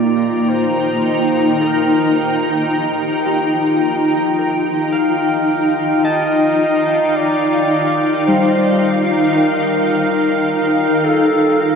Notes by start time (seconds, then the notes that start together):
Already playing: A#3 D#4 F4 D5 G5 A#5
0.49 C5
1.60 A#4
3.26 G4
4.38 A#4
4.92 D#4 F5
5.14 F5
6.04 D#5 A5
7.15 D5
8.26 G3 C5
9.36 A#4
11.05 A4
11.61 A#4